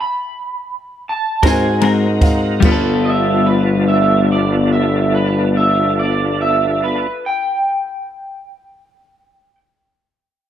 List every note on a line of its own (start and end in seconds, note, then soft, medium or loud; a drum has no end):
0.01 1.03 B5 medium
1.09 1.44 A5 loud
1.43 2.59 G#2 loud
1.43 2.63 C4 medium
1.43 1.68 C4 medium
1.43 2.62 D#4 medium
1.43 2.63 F#4 medium
1.43 1.67 F#4 medium
1.43 2.62 F#4 medium
1.43 1.66 A#4 medium
1.43 2.63 A#4 medium
1.43 2.62 A#4 medium
1.43 2.63 C5 medium
1.43 kick loud
1.43 snare loud
1.43 ride medium
1.47 1.83 G#5 loud
1.81 2.06 G#3 medium
1.81 2.06 C4 medium
1.81 2.07 F#4 medium
1.81 2.07 A#4 medium
1.81 2.19 A#5 medium
1.81 ride medium
2.21 2.61 F5 medium
2.21 kick medium
2.21 snare soft
2.21 ride medium
2.60 7.05 G1 loud
2.60 7.07 G3 medium
2.60 7.05 F4 medium
2.60 7.07 A4 medium
2.60 kick loud
2.60 crash medium
2.65 7.07 B3 medium
2.65 7.12 B3 medium
2.65 7.08 D4 medium
2.65 7.07 F4 medium
2.65 7.09 B4 medium
2.69 7.15 F4 medium
2.69 7.18 A4 medium
3.05 3.46 E5 loud
3.46 3.87 B4 medium
3.88 4.29 E5 medium
4.32 4.72 D5 medium
4.73 5.13 E5 medium
5.15 5.55 B4 loud
5.57 5.97 E5 medium
5.99 6.40 D5 medium
6.41 6.82 E5 loud
6.84 7.24 B4 medium
7.26 9.55 G5 medium